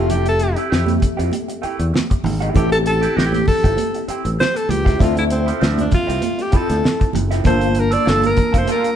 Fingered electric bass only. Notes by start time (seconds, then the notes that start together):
Already playing: F1
0.72 F2
1.19 F2
1.64 muted fingered electric bass stroke
1.79 E2
2.24 G#1
2.56 A1
3.17 A1
3.64 G1
4.08 muted fingered electric bass stroke
4.25 A1
4.69 C#2
5.00 D2
5.62 D2
6.09 C2
6.53 muted fingered electric bass stroke
6.70 D2
7.15 F#1
7.45 G1
8.07 G1
8.54 F1